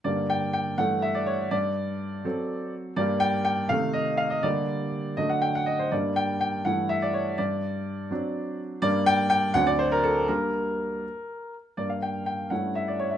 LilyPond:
<<
  \new Staff \with { instrumentName = "Grand piano" } { \time 6/8 \key g \minor \tempo 4. = 82 d''8 g''8 g''8 fis''8 e''16 d''16 cis''8 | d''2~ d''8 r8 | d''8 g''8 g''8 f''8 ees''8 f''16 ees''16 | d''4. ees''16 fis''16 g''16 fis''16 ees''16 c''16 |
d''8 g''8 g''8 fis''8 e''16 d''16 cis''8 | d''2~ d''8 r8 | d''8 g''8 g''8 fis''16 d''16 c''16 bes'16 a'8 | bes'2~ bes'8 r8 |
d''16 f''16 g''8 g''8 fis''8 e''16 d''16 cis''16 e''16 | }
  \new Staff \with { instrumentName = "Grand piano" } { \time 6/8 \key g \minor <g, d bes g'>4. <g, e a a'>4. | g,4. <fis c' a'>4. | <g, g bes g'>4. <c ees a a'>4. | <d g bes g'>4. <d fis a d'>4. |
<g, g bes d'>4. <g, e a e'>4. | g,4. <fis c' d'>4. | <g, g bes d'>4. <d, fis c' d'>4. | <g bes d'>4. r4. |
<g, bes d'>4. <g, a cis' e'>4. | }
>>